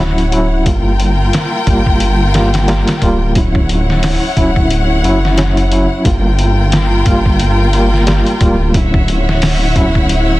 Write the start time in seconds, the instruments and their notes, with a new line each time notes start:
Already playing: detuned saw bass D1, string section E4 C#5 F#5
0.00 reed electric piano F#3 C#4 E4
0.18 closed hi-hat
0.32 reed electric piano F#3 C#4 E4, closed hi-hat
0.65 detuned saw bass G1, reed electric piano G3 A#3 F4, string section F4 A#4 G5, kick, closed hi-hat
1.00 closed hi-hat
1.33 snare, closed hi-hat
1.67 detuned saw bass G1, reed electric piano G3 A#3 F4, kick, closed hi-hat
1.86 kick
2.00 closed hi-hat
2.34 reed electric piano G3 A#3 F4, snare, closed hi-hat
2.54 snare, closed hi-hat
2.68 reed electric piano G3 A#3 F4, snare, closed hi-hat
2.88 snare, closed hi-hat
3.02 detuned saw bass D1, reed electric piano G3 A#3 F4, kick, closed hi-hat
3.35 reed electric piano F#3 C#4 E4, string section E4 C#5 F#5, kick, closed hi-hat
3.55 kick
3.69 closed hi-hat
3.90 snare
4.03 snare, open hi-hat
4.36 detuned saw bass D1, reed electric piano F#3 C#4 E4, kick, closed hi-hat
4.56 kick
4.70 closed hi-hat
5.04 detuned saw bass F#1, reed electric piano F#3 C#4 E4, closed hi-hat
5.25 snare
5.37 reed electric piano F#3 C#4 E4, snare, closed hi-hat
5.57 closed hi-hat
5.71 reed electric piano F#3 C#4 E4, closed hi-hat
6.04 detuned saw bass G1, reed electric piano G3 A#3 F4, string section F4 A#4 G5, kick, closed hi-hat
6.39 closed hi-hat
6.72 snare, closed hi-hat
7.06 detuned saw bass G1, reed electric piano G3 A#3 F4, kick, closed hi-hat
7.25 kick
7.39 closed hi-hat
7.73 reed electric piano G3 A#3 F4, closed hi-hat
7.94 snare
8.07 reed electric piano G3 A#3 F4, snare, closed hi-hat
8.26 closed hi-hat
8.41 detuned saw bass D1, reed electric piano G3 A#3 F4, kick, closed hi-hat
8.74 reed electric piano F#3 C#4 E4, string section E4 C#5 E5 F#5, kick, closed hi-hat
8.94 kick
9.08 closed hi-hat
9.29 snare
9.42 snare, open hi-hat
9.76 detuned saw bass D1, reed electric piano F#3 C#4 E4, kick, closed hi-hat
9.95 kick
10.09 closed hi-hat